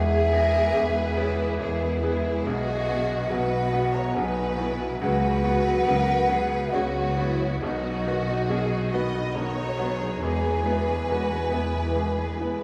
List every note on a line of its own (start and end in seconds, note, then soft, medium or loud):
0.00 0.30 E1 medium
0.00 0.30 E2 medium
0.00 0.65 E2 medium
0.00 0.32 G#3 soft
0.00 0.32 B3 soft
0.00 0.31 G#4 medium
0.00 1.18 G#4 medium
0.00 1.19 E5 loud
0.33 1.17 G#3 medium
0.33 0.71 B3 soft
0.33 1.17 B3 medium
0.33 0.72 G#4 soft
0.33 0.76 A#4 medium
0.74 1.16 E1 medium
0.74 1.16 E2 medium
0.74 1.51 E2 medium
0.74 1.61 B4 medium
1.17 2.03 G#3 medium
1.17 1.56 B3 medium
1.17 2.03 B3 medium
1.17 1.60 E4 medium
1.17 1.61 E4 medium
1.17 1.56 G#4 soft
1.17 1.56 B4 medium
1.17 1.63 C#5 medium
1.59 2.01 E1 medium
1.59 2.01 E2 medium
1.59 2.36 E2 medium
1.59 2.45 E4 medium
1.59 2.02 G#4 medium
1.59 2.46 B4 medium
2.03 2.46 G#3 medium
2.03 2.42 B3 soft
2.03 2.46 B3 medium
2.03 3.28 G#4 medium
2.03 2.42 G#4 medium
2.03 2.42 B4 soft
2.45 3.21 B1 medium
2.45 2.87 B1 medium
2.45 2.88 B2 medium
2.45 3.30 F#4 medium
2.45 3.31 F#4 medium
2.45 3.33 D#5 loud
2.89 3.73 F#3 medium
2.89 3.27 B3 soft
2.89 3.72 B3 medium
2.89 3.27 F#4 soft
2.89 3.27 B4 soft
3.30 4.06 B1 medium
3.30 3.72 B1 soft
3.30 3.72 B2 medium
3.30 4.16 F#4 medium
3.30 3.94 B4 medium
3.30 3.96 F#5 loud
3.73 4.58 F#3 medium
3.73 4.12 B3 soft
3.73 4.58 B3 medium
3.73 4.12 F#4 soft
3.73 4.12 B4 medium
3.93 4.15 C#5 medium
3.93 4.16 C#5 medium
3.93 4.16 A#5 medium
4.14 4.90 B1 medium
4.14 4.57 B1 medium
4.14 4.57 B2 medium
4.14 4.59 D#4 medium
4.14 4.99 B4 medium
4.14 5.00 B4 medium
4.14 4.73 G#5 medium
4.58 5.00 F#3 medium
4.58 4.96 B3 soft
4.58 5.01 B3 medium
4.58 5.01 E4 medium
4.58 4.97 F#4 soft
4.58 4.97 B4 medium
5.00 5.76 C#2 medium
5.00 5.42 C#2 medium
5.00 5.42 C#3 medium
5.00 5.42 F#3 medium
5.00 5.43 B3 soft
5.00 5.84 F#4 medium
5.00 6.69 B4 loud
5.00 6.70 B4 medium
5.00 6.75 F#5 loud
5.43 6.28 F#3 medium
5.43 5.82 B3 soft
5.43 6.28 B3 medium
5.43 5.82 F#4 soft
5.43 5.83 B4 medium
5.86 6.63 C#2 medium
5.86 6.29 C#2 medium
5.86 6.29 C#3 medium
5.86 6.29 A#4 medium
6.29 7.16 F#3 medium
6.29 6.69 B3 medium
6.29 7.16 B3 medium
6.29 6.70 F#4 soft
6.29 6.73 G#4 medium
6.29 6.70 B4 medium
6.73 7.16 C#2 medium
6.73 7.52 C#2 medium
6.73 7.16 C#3 medium
6.73 7.18 F#4 medium
6.73 7.62 F#4 medium
6.73 7.63 C#5 medium
7.17 7.61 F#3 medium
7.17 7.61 B3 medium
7.17 7.58 B3 soft
7.17 7.62 E4 medium
7.17 7.58 F#4 soft
7.17 7.58 B4 soft
7.61 8.04 B1 medium
7.61 10.18 B1 medium
7.61 8.04 B2 medium
7.61 7.82 D#3 medium
7.61 7.83 B3 medium
7.61 8.05 D#4 medium
7.61 8.89 F#4 medium
7.61 8.90 F#4 medium
7.61 8.94 D#5 medium
7.83 8.05 F#3 medium
7.83 8.05 D#4 medium
8.06 8.27 D#3 medium
8.06 8.27 B3 medium
8.06 8.45 B3 soft
8.06 8.49 F#4 medium
8.06 8.46 F#4 soft
8.06 8.46 B4 soft
8.28 8.49 F#3 medium
8.28 8.49 D#4 medium
8.48 8.91 B1 medium
8.48 8.91 B2 medium
8.48 8.69 D#3 medium
8.48 8.69 B3 soft
8.48 8.90 G#4 medium
8.71 8.92 F#3 medium
8.71 8.92 D#4 soft
8.92 9.13 D#3 medium
8.92 9.13 B3 medium
8.92 9.31 B3 soft
8.92 9.34 F#4 medium
8.92 9.31 F#4 soft
8.92 9.32 B4 medium
8.92 9.34 D#5 medium
8.92 9.37 B5 medium
9.13 9.34 F#3 soft
9.13 9.35 D#4 medium
9.34 9.77 B1 soft
9.34 9.77 B2 medium
9.34 9.55 D#3 medium
9.34 9.55 B3 medium
9.34 9.77 F#4 medium
9.34 10.21 C#5 medium
9.34 10.22 C#5 medium
9.34 10.22 A#5 medium
9.56 9.78 F#3 medium
9.56 9.78 D#4 medium
9.78 10.00 D#3 soft
9.78 10.18 B3 soft
9.78 10.00 B3 soft
9.78 10.18 F#4 soft
9.78 11.08 G#4 medium
9.78 10.18 B4 soft
10.00 10.21 F#3 medium
10.00 10.21 D#4 medium
10.20 10.64 E1 medium
10.20 10.64 E2 medium
10.20 12.63 E2 medium
10.20 10.40 G#3 soft
10.20 10.41 B3 soft
10.20 12.63 B4 medium
10.20 12.52 G#5 loud
10.42 10.64 E3 medium
10.42 10.62 G#3 medium
10.63 10.83 G#3 medium
10.63 10.85 B3 medium
10.63 11.04 B3 soft
10.63 11.05 E4 soft
10.63 11.05 B4 soft
10.84 11.07 E3 soft
10.84 11.06 G#3 soft
11.07 11.51 E1 soft
11.07 11.51 E2 soft
11.07 11.28 G#3 soft
11.07 11.28 B3 soft
11.07 11.52 F#4 medium
11.30 11.52 E3 soft
11.30 11.51 G#3 soft
11.52 11.72 G#3 soft
11.52 11.74 B3 soft
11.52 11.92 B3 soft
11.52 11.96 E4 medium
11.52 11.92 E4 soft
11.52 11.92 B4 soft
11.73 11.96 E3 soft
11.73 11.93 G#3 soft
11.94 12.38 E1 soft
11.94 12.38 E2 soft
11.94 12.15 G#3 soft
11.94 12.15 B3 soft
11.94 12.40 G#4 medium
12.16 12.39 E3 soft
12.16 12.37 G#3 soft
12.37 12.58 G#3 soft
12.37 12.61 B3 soft
12.37 12.63 B3 soft
12.37 12.63 E4 medium
12.37 12.63 E4 soft
12.41 12.63 B4 soft
12.60 12.63 E3 soft
12.60 12.63 G#3 soft